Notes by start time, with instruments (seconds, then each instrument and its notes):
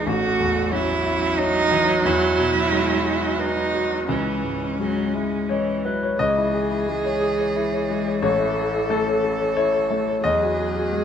Already playing: grand piano C#2 E3
0.07 grand piano A1, viola A3, cello F#4
0.40 grand piano E2
0.72 viola F#3, grand piano C#4, cello E4
1.06 grand piano E4
1.39 cello D#4, grand piano C#5
1.71 grand piano E3
2.05 grand piano E2, cello E4
2.38 grand piano B2
2.71 grand piano G#3
3.05 grand piano F#4
3.39 cello D#4, grand piano B4
3.73 grand piano F#4
4.08 grand piano C#2, viola E3, cello C#4
4.44 grand piano G#2
4.79 viola F#3, grand piano G#3
5.14 viola G#3, grand piano E4
5.49 viola E3, grand piano C#5 D#5
5.85 viola F#3, grand piano E4 B4
6.03 grand piano C#5
6.19 grand piano C#2 D#5, cello E3, viola G#4
6.37 grand piano E4
6.54 grand piano G#4
6.71 grand piano E4
6.88 grand piano G#3
7.05 grand piano C#5
7.21 grand piano G#4
7.39 grand piano C#5
7.56 grand piano E4
7.72 grand piano C#5
7.90 grand piano G#3
8.06 grand piano C#5
8.22 grand piano A1 C#5, viola A4
8.40 grand piano E4
8.57 grand piano A4
8.74 grand piano E4
8.90 grand piano A3 A4
9.07 grand piano C#5
9.24 grand piano A4
9.40 grand piano C#5
9.57 grand piano E4 C#5
9.74 grand piano C#5
9.91 grand piano A3
10.08 grand piano C#5
10.24 grand piano E2 D#5, cello F#3, viola G#4
10.42 grand piano F#4
10.58 grand piano G#4
10.76 grand piano F#4
10.92 grand piano G#3